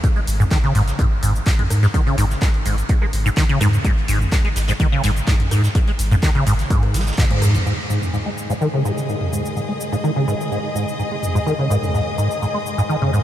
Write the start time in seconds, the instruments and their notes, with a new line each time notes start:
0.04 acid bass G#2, kick, closed hi-hat, cabasa
0.16 acid bass G#3, closed hi-hat
0.27 sub bass G#1, closed hi-hat, open hi-hat, cabasa
0.40 acid bass G#2, mid tom, cabasa
0.51 acid bass D#3, kick, cross-stick, snare, clap, closed hi-hat, cabasa
0.64 acid bass C#3, snare, closed hi-hat
0.75 sub bass G#1, acid bass G#2, closed hi-hat, open hi-hat, cabasa
0.87 snare, closed hi-hat, cabasa
0.99 acid bass G#2, kick, closed hi-hat, cabasa
1.23 sub bass G#1, acid bass G#2, closed hi-hat, open hi-hat, cabasa
1.35 closed hi-hat, cabasa
1.46 acid bass G#2, kick, snare, clap, closed hi-hat, cabasa
1.59 acid bass G#3, closed hi-hat, mid tom
1.70 sub bass G#2, cross-stick, closed hi-hat, open hi-hat, cabasa
1.83 acid bass G#2, snare, closed hi-hat, cabasa
1.94 acid bass D#3, kick, closed hi-hat, cabasa
2.06 acid bass C#3, closed hi-hat
2.17 sub bass G#1, acid bass G#2, closed hi-hat, open hi-hat, cabasa
2.30 snare, cabasa
2.41 acid bass G#2, kick, cross-stick, snare, clap, closed hi-hat, cabasa
2.54 closed hi-hat
2.65 sub bass G#1, acid bass G#2, closed hi-hat, open hi-hat, cabasa
2.78 closed hi-hat, cabasa
2.89 acid bass G#2, kick, closed hi-hat, cabasa
3.02 acid bass G#3, cross-stick
3.13 sub bass G#1, closed hi-hat, open hi-hat, cabasa
3.25 acid bass G#2, cabasa
3.37 acid bass D#3, kick, snare, clap, closed hi-hat, cabasa
3.49 acid bass C#3, closed hi-hat
3.60 acid bass G#2, sub bass G#2, cross-stick, closed hi-hat, mid tom, open hi-hat, cabasa
3.73 closed hi-hat, cabasa
3.85 acid bass G#2, kick, closed hi-hat, cabasa
3.97 closed hi-hat
4.08 sub bass G#1, acid bass G#2, closed hi-hat, open hi-hat, cabasa
4.21 mid tom, cabasa
4.32 acid bass G#2, kick, cross-stick, snare, clap, closed hi-hat, cabasa
4.45 acid bass G#3, snare, closed hi-hat
4.56 sub bass G#1, snare, closed hi-hat, open hi-hat, cabasa
4.68 acid bass G#2, snare, closed hi-hat, cabasa
4.80 acid bass D#3, kick, closed hi-hat, cabasa
4.92 acid bass C#3
5.03 sub bass G#1, acid bass G#2, snare, closed hi-hat, open hi-hat, cabasa
5.16 closed hi-hat, cabasa
5.27 acid bass G#2, kick, snare, clap, closed hi-hat, cabasa
5.40 closed hi-hat, mid tom
5.51 sub bass G#2, acid bass G#2, cross-stick, closed hi-hat, open hi-hat, cabasa
5.64 snare, closed hi-hat, cabasa
5.75 acid bass G#2, kick, closed hi-hat, cabasa
5.88 acid bass G#3, closed hi-hat
5.99 sub bass G#1, closed hi-hat, open hi-hat, cabasa
6.11 acid bass G#2, closed hi-hat, mid tom, cabasa
6.23 acid bass D#3, kick, cross-stick, snare, clap, closed hi-hat, cabasa
6.35 acid bass C#3, closed hi-hat
6.46 sub bass G#1, acid bass G#2, closed hi-hat, open hi-hat, cabasa
6.59 snare, closed hi-hat, cabasa
6.70 acid bass G#2, kick, closed hi-hat, cabasa
6.83 cross-stick, closed hi-hat
6.94 sub bass G#1, acid bass G#3, snare, closed hi-hat, open hi-hat, cabasa
7.00 snare, closed hi-hat
7.07 snare, closed hi-hat, cabasa
7.12 snare, closed hi-hat
7.18 acid bass G#2, kick, snare, clap, closed hi-hat, high tom, cabasa
7.30 acid bass G#2, closed hi-hat, high tom
7.42 sub bass G#2, cross-stick, closed hi-hat, mid tom, open hi-hat, cabasa
7.54 acid bass G#1, closed hi-hat, mid tom, cabasa
7.66 acid bass G#2, string section G#3, cabasa
7.90 acid bass G#2, cabasa
7.94 string section G#4
8.02 mid tom, cabasa
8.13 acid bass G#2, cabasa
8.26 acid bass G#3
8.38 cabasa
8.50 acid bass G#2, cabasa
8.61 acid bass D#3, cabasa
8.73 acid bass C#3
8.80 string section D#5 D#6
8.85 acid bass G#2, cabasa
8.98 cabasa
9.09 acid bass G#2, cabasa
9.21 mid tom
9.32 acid bass G#2, cabasa
9.46 cabasa
9.56 acid bass G#2, cabasa
9.69 acid bass G#3
9.81 cabasa
9.92 acid bass G#2, cabasa
10.04 acid bass D#3, cabasa
10.16 acid bass C#3
10.28 acid bass G#2, cabasa
10.41 cabasa
10.51 acid bass G#2, cabasa
10.75 acid bass G#2, cabasa
10.88 cabasa
10.99 acid bass G#2, cabasa
11.11 acid bass G#3
11.23 mid tom, cabasa
11.35 acid bass G#2, cabasa
11.46 acid bass D#3, cabasa
11.59 acid bass C#3
11.70 acid bass G#2, cabasa
11.83 mid tom, cabasa
11.94 acid bass G#2, cabasa
12.18 acid bass G#2, cabasa
12.31 cabasa
12.42 acid bass G#2, cabasa
12.54 acid bass G#3
12.66 cabasa
12.78 acid bass G#2, cabasa
12.89 acid bass D#3, cabasa
13.02 acid bass C#3, mid tom
13.13 acid bass G#2, cabasa